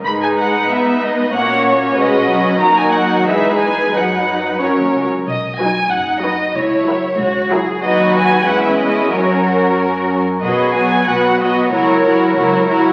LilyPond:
<<
  \new Staff \with { instrumentName = "Violin section" } { \time 2/4 \key gis \minor \tempo 4 = 93 b''16 gis''16 fis''8 e''8 dis''8 | fis''8 cis''8 dis''4 | \key b \major ais''16 gis''16 fis''8 e''8 gis''8 | fis''4 r4 |
dis''8 gis''8 fis''8 dis''8 | cis''4. r8 | dis''8 gis''8 fis''16 e''16 dis''8 | cis''4 r4 |
dis''8 gis''8 fis''8 dis''8 | cis''4. r8 | }
  \new Staff \with { instrumentName = "Violin section" } { \time 2/4 \key gis \minor <dis' b'>2 | <fis' cis''>4 <fis' b'>4 | \key b \major <fis' ais'>4 <gis' b'>4 | b'4 <ais' cis''>8 r8 |
r8 <fis' b'>8 r8 <fis' b'>8 | r8 <fis' ais'>8 r8 <fis' ais'>8 | <fis' b'>4 <e' b'>4 | <fis' ais'>4. r8 |
<fis' b'>8 <fis' b'>8 <fis' b'>8 <fis' b'>8 | <fis' ais'>8 <fis' ais'>8 <fis' ais'>8 <fis' ais'>8 | }
  \new Staff \with { instrumentName = "Cello section" } { \time 2/4 \key gis \minor gis,4 gis4 | ais,4 b,4 | \key b \major dis,4 e,4 | fis,4 fis,16 dis,16 cis,8 |
r4 dis'4 | e'4 fis'8 gis'8 | fis'4 cis'4 | ais'4. r8 |
gis'4 fis'4 | ais'2 | }
  \new Staff \with { instrumentName = "Viola section" } { \time 2/4 \key gis \minor << { dis'4 b4 | cis'2 | \key b \major dis'2 | dis'4 cis'8 r8 |
r8 dis'8 r8 dis'8 | r8 e'8 r8 e'8 | dis'4 cis'4 | cis'4. r8 |
b8 b8 b8 b8 | e'8 e'8 e'8 e'8 | } \\ { gis4 b4 | ais4 gis8 fis8 | fis4 gis4 | fis4 fis8 r8 |
r8 fis8 r8 fis8 | r8 fis8 r8 fis8 | fis4 gis4 | fis4. r8 |
fis8 fis8 fis8 fis8 | fis8 fis8 fis8 fis8 | } >> }
  \new Staff \with { instrumentName = "Double bass section" } { \clef bass \time 2/4 \key gis \minor r2 | r2 | \key b \major r2 | r2 |
b,,4 fis,,4 | cis,4 cis,4 | dis,4 e,4 | fis,4. r8 |
b,,4 b,,4 | cis,4 cis,4 | }
>>